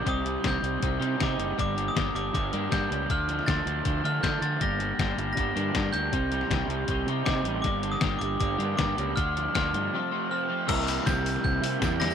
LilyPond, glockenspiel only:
\new Staff \with { instrumentName = "Glockenspiel" } { \time 4/4 \key g \minor \tempo 4 = 158 ees'''4 g'''2 d'''4 | d'''8. ees'''8. d'''8 d'''4 g'''4 | f'''4 a'''4. f'''8 g'''8 a'''8 | bes'''2 bes'''4. g'''8~ |
g'''4. r4. d'''4 | d'''8. ees'''8. d'''8 d'''4 d'''4 | f'''4 f'''2 f'''4 | e'''4 g'''4 g'''4 r8 bes'''8 | }